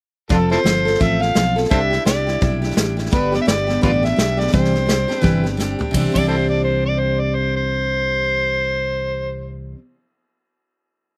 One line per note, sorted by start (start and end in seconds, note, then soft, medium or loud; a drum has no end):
0.29 0.56 F1 medium
0.29 0.51 F3 medium
0.29 0.52 C4 medium
0.29 0.38 D4 soft
0.29 0.37 F4 soft
0.29 0.51 F4 medium
0.29 0.50 A4 medium
0.29 0.49 A4 medium
0.29 kick loud
0.29 snare soft
0.50 0.64 C4 soft
0.50 0.58 E4 medium
0.50 0.65 F4 soft
0.50 0.65 A4 soft
0.50 0.60 A4 medium
0.50 1.02 C5 medium
0.50 snare soft
0.64 0.95 G1 medium
0.64 0.86 F3 medium
0.64 0.87 C4 medium
0.64 0.85 F4 medium
0.64 0.84 A4 medium
0.64 snare loud
0.64 hi-hat pedal medium
0.85 0.99 C4 soft
0.85 1.00 F4 soft
0.85 1.00 A4 medium
0.85 snare soft
0.94 snare soft
1.00 1.31 A1 medium
1.00 1.22 F3 medium
1.00 1.21 C4 medium
1.00 1.21 F4 medium
1.00 1.18 A4 medium
1.00 1.23 E5 medium
1.00 kick medium
1.00 snare soft
1.20 1.35 C4 soft
1.20 1.36 F4 soft
1.20 1.35 A4 soft
1.20 1.57 F5 medium
1.20 snare soft
1.34 1.66 B1 medium
1.34 1.57 F3 medium
1.34 1.57 C4 medium
1.34 1.56 F4 medium
1.34 1.55 A4 medium
1.34 snare medium
1.34 hi-hat pedal medium
1.56 1.71 C4 soft
1.56 1.71 F4 soft
1.56 1.71 A4 soft
1.56 snare soft
1.64 snare soft
1.69 1.97 C2 medium
1.69 1.92 C3 medium
1.69 1.92 G3 medium
1.69 1.92 D4 medium
1.69 1.91 E4 medium
1.69 1.89 G4 medium
1.69 1.79 A4 medium
1.69 1.79 C5 medium
1.69 2.04 E5 medium
1.69 kick loud
1.69 snare soft
1.90 2.05 D4 soft
1.90 2.07 E4 soft
1.90 2.06 G4 soft
1.90 snare soft
2.05 2.36 C2 medium
2.05 2.27 G3 medium
2.05 2.28 D4 medium
2.05 2.27 E4 medium
2.05 2.26 G4 medium
2.05 2.59 D5 medium
2.05 snare loud
2.05 hi-hat pedal medium
2.27 2.41 D4 soft
2.27 2.41 E4 soft
2.27 2.41 G4 soft
2.27 snare soft
2.41 2.72 B1 medium
2.41 2.63 C3 medium
2.41 2.63 G3 medium
2.41 2.63 D4 medium
2.41 2.62 E4 medium
2.41 2.61 G4 medium
2.41 kick medium
2.41 snare soft
2.62 2.75 D4 soft
2.62 2.76 E4 soft
2.62 2.76 G4 medium
2.62 snare soft
2.70 snare soft
2.74 3.07 A1 medium
2.74 2.97 G3 medium
2.74 2.98 D4 medium
2.74 2.98 E4 medium
2.74 2.95 G4 medium
2.74 snare loud
2.74 hi-hat pedal medium
2.97 3.11 D4 soft
2.97 3.12 E4 medium
2.97 3.12 G4 medium
2.97 snare soft
3.06 snare soft
3.10 3.38 G1 medium
3.10 3.33 G2 medium
3.10 3.33 D3 medium
3.10 3.33 G3 medium
3.10 3.33 B3 medium
3.10 3.32 D4 medium
3.10 3.31 G4 medium
3.10 3.36 B4 medium
3.10 kick loud
3.10 snare soft
3.32 3.44 G3 soft
3.32 3.46 B3 soft
3.32 3.47 D4 soft
3.32 3.47 G4 soft
3.32 3.41 D5 medium
3.32 snare soft
3.42 3.47 E5 medium
3.46 3.77 G1 medium
3.46 3.68 G3 medium
3.46 3.68 B3 medium
3.46 3.67 D4 medium
3.46 3.66 G4 medium
3.46 3.80 D5 medium
3.46 snare loud
3.46 hi-hat pedal medium
3.67 3.82 G3 soft
3.67 3.82 B3 soft
3.67 3.82 D4 soft
3.67 3.82 G4 medium
3.67 snare soft
3.81 4.13 A1 medium
3.81 4.03 G2 medium
3.81 4.04 D3 medium
3.81 4.04 G3 medium
3.81 4.04 B3 medium
3.81 4.03 D4 medium
3.81 3.91 F4 medium
3.81 4.01 G4 medium
3.81 3.90 B4 medium
3.81 4.06 D5 medium
3.81 kick medium
3.81 snare soft
4.03 4.15 G3 soft
4.03 4.16 B3 soft
4.03 4.18 D4 soft
4.03 4.17 G4 soft
4.03 4.42 E5 medium
4.03 snare soft
4.16 4.48 B1 medium
4.16 4.38 G3 medium
4.16 4.39 B3 medium
4.16 4.37 D4 medium
4.16 4.36 G4 medium
4.16 snare medium
4.16 hi-hat pedal medium
4.37 4.51 G3 soft
4.37 4.52 B3 soft
4.37 4.52 D4 soft
4.37 4.52 G4 soft
4.37 4.52 D5 medium
4.37 snare soft
4.47 4.73 C3 medium
4.47 snare soft
4.52 5.05 C2 medium
4.52 4.74 E3 medium
4.52 4.74 G3 medium
4.52 4.74 C4 medium
4.52 4.73 D4 medium
4.52 4.72 G4 medium
4.52 5.21 C5 medium
4.52 kick loud
4.52 snare soft
4.65 snare soft
4.73 4.84 G3 soft
4.73 4.86 C4 soft
4.73 4.87 D4 soft
4.73 4.88 G4 soft
4.73 snare soft
4.86 5.08 G3 soft
4.86 5.09 C4 medium
4.86 5.08 D4 medium
4.86 5.07 G4 medium
4.86 snare loud
4.86 hi-hat pedal medium
5.08 5.21 G3 soft
5.08 5.22 C4 soft
5.08 5.22 D4 medium
5.08 5.22 G4 medium
5.08 snare soft
5.21 5.75 G1 medium
5.21 5.43 C3 medium
5.21 5.44 E3 medium
5.21 5.44 G3 medium
5.21 5.44 C4 medium
5.21 5.43 D4 medium
5.21 5.42 G4 medium
5.21 5.55 B4 medium
5.21 kick medium
5.21 snare soft
5.44 5.57 C4 soft
5.44 5.59 D4 soft
5.44 5.58 G4 soft
5.44 snare soft
5.57 5.79 G3 medium
5.57 5.80 C4 medium
5.57 5.79 D4 medium
5.57 5.78 G4 medium
5.57 snare soft
5.57 hi-hat pedal medium
5.79 5.93 G3 soft
5.79 5.94 C4 soft
5.79 5.94 D4 soft
5.79 5.93 G4 medium
5.79 floor tom medium
5.91 6.06 C2 medium
5.91 6.12 C3 medium
5.91 6.13 E3 medium
5.91 6.15 G3 medium
5.91 kick medium
5.91 ride medium
5.95 6.16 C4 medium
5.95 6.15 D4 medium
5.95 6.18 G4 medium
6.12 9.74 C2 medium
6.12 9.74 C3 medium
6.12 9.76 E3 medium
6.12 9.77 G3 medium
6.12 6.27 D5 medium
6.12 kick medium
6.12 ride medium
6.16 9.78 C4 medium
6.16 9.80 D4 medium
6.16 9.81 G4 medium
6.28 6.36 E4 soft
6.28 6.35 A4 soft
6.28 6.49 C5 medium
6.50 6.63 D5 medium
6.64 6.84 C5 medium
6.85 7.00 D5 medium
6.99 7.21 C5 medium
7.20 7.36 D5 medium
7.35 7.55 C5 medium
7.56 9.51 C5 loud